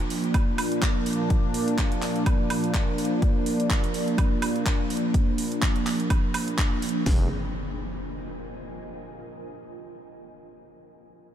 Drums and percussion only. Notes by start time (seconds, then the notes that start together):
0.10 open hi-hat
0.24 closed hi-hat
0.34 kick, closed hi-hat, high woodblock
0.58 open hi-hat, high woodblock
0.72 closed hi-hat
0.82 kick, clap, closed hi-hat
1.06 open hi-hat
1.13 closed hi-hat
1.30 kick, closed hi-hat
1.54 open hi-hat
1.68 closed hi-hat
1.78 kick, clap
1.92 closed hi-hat
2.02 clap, open hi-hat
2.16 closed hi-hat
2.26 kick, closed hi-hat, high woodblock
2.50 open hi-hat, high woodblock
2.64 closed hi-hat
2.74 kick, clap, closed hi-hat
2.98 open hi-hat
3.05 closed hi-hat
3.22 kick, closed hi-hat
3.46 open hi-hat
3.60 closed hi-hat
3.70 kick, clap
3.84 closed hi-hat
3.94 open hi-hat
4.08 closed hi-hat
4.18 kick, closed hi-hat, high woodblock
4.42 open hi-hat, high woodblock
4.56 closed hi-hat
4.66 kick, clap, closed hi-hat
4.90 open hi-hat
4.97 closed hi-hat
5.14 kick, closed hi-hat
5.38 open hi-hat
5.52 closed hi-hat
5.62 kick, clap
5.76 closed hi-hat
5.86 clap, open hi-hat
6.00 closed hi-hat
6.10 kick, closed hi-hat, high woodblock
6.34 open hi-hat, high woodblock
6.48 closed hi-hat
6.58 kick, clap, closed hi-hat
6.82 open hi-hat
6.89 closed hi-hat
7.06 kick, snare, open hi-hat